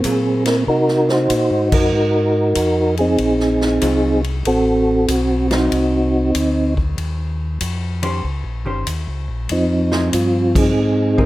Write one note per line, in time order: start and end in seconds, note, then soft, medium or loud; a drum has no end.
0.00 0.64 A#3 medium
0.00 0.64 C4 medium
0.00 hi-hat pedal medium
0.00 ride medium
0.04 0.65 A#2 medium
0.04 0.43 F#3 medium
0.04 0.43 C4 medium
0.04 0.43 F4 medium
0.04 0.44 G#4 medium
0.04 kick soft
0.46 0.57 A#4 medium
0.46 snare medium
0.46 ride medium
0.67 1.28 C3 medium
0.67 1.10 D#4 medium
0.67 1.10 F#4 medium
0.67 1.11 A#4 medium
0.67 kick soft
0.88 snare soft
1.09 1.74 D#4 medium
1.09 1.73 F#4 medium
1.09 1.69 C5 loud
1.09 snare soft
1.30 1.50 A#2 medium
1.30 kick soft
1.30 hi-hat pedal medium
1.30 ride medium
1.51 1.72 G#2 medium
1.72 1.92 F#2 medium
1.72 2.96 D#4 medium
1.72 2.95 F#4 medium
1.72 2.95 A#4 medium
1.72 kick medium
1.72 crash medium
1.93 2.54 G#2 medium
2.55 3.17 F2 medium
2.55 kick soft
2.55 hi-hat pedal medium
2.55 ride medium
2.97 4.21 C4 medium
2.97 4.22 D#4 medium
2.97 4.21 G#4 medium
2.97 ride soft
3.18 3.80 A#1 medium
3.18 kick soft
3.18 ride medium
3.40 snare soft
3.61 snare soft
3.81 4.43 C2 medium
3.81 4.20 F#3 medium
3.81 4.21 C4 medium
3.81 4.21 F4 medium
3.81 kick soft
3.81 hi-hat pedal medium
3.81 ride medium
4.24 ride soft
4.45 5.06 A1 medium
4.45 5.52 C4 medium
4.45 5.07 F#4 medium
4.45 5.11 A4 medium
4.45 kick soft
4.45 ride medium
5.08 5.70 B1 medium
5.08 5.47 F#4 medium
5.08 kick soft
5.08 hi-hat pedal medium
5.08 ride medium
5.51 5.70 F#3 medium
5.51 5.70 C4 medium
5.51 6.74 C4 medium
5.51 5.70 D#4 medium
5.51 6.74 D#4 medium
5.51 6.31 F#4 medium
5.51 snare medium
5.51 ride soft
5.72 6.33 C2 medium
5.72 kick soft
5.72 ride medium
6.35 6.96 D2 medium
6.35 kick soft
6.35 hi-hat pedal medium
6.35 ride medium
6.77 kick medium
6.97 7.59 D#2 medium
6.97 kick soft
6.97 ride medium
7.61 8.22 F2 medium
7.61 kick soft
7.61 hi-hat pedal medium
7.61 ride medium
8.03 8.22 D#3 medium
8.03 8.22 C#4 medium
8.03 8.22 G4 medium
8.03 8.22 C5 medium
8.03 ride medium
8.24 8.44 C#2 medium
8.24 kick soft
8.44 8.65 A#1 soft
8.65 8.85 G1 medium
8.65 8.85 D#3 medium
8.65 8.85 C#4 medium
8.65 8.85 G4 medium
8.65 8.85 C5 medium
8.87 9.07 D#2 medium
8.87 kick soft
8.87 hi-hat pedal medium
8.87 ride medium
9.07 9.29 C#2 soft
9.28 9.48 A#1 medium
9.49 10.11 F2 medium
9.49 10.73 F3 medium
9.49 10.57 C4 medium
9.49 10.10 D#4 medium
9.49 kick soft
9.49 ride medium
9.92 10.11 F3 medium
9.92 10.11 C4 medium
9.92 10.11 D#4 medium
9.92 10.12 G#4 medium
9.92 snare medium
10.13 10.74 G2 medium
10.13 10.57 F4 medium
10.13 kick soft
10.13 hi-hat pedal medium
10.13 ride medium
10.55 11.26 C4 medium
10.55 11.19 D#4 medium
10.55 11.21 G#4 medium
10.55 kick medium
10.55 crash medium
10.74 11.26 G#2 medium
11.18 11.26 F3 medium
11.18 11.26 C4 medium
11.18 11.26 D#4 medium
11.18 11.26 G#4 medium
11.18 11.26 A#4 medium
11.18 kick medium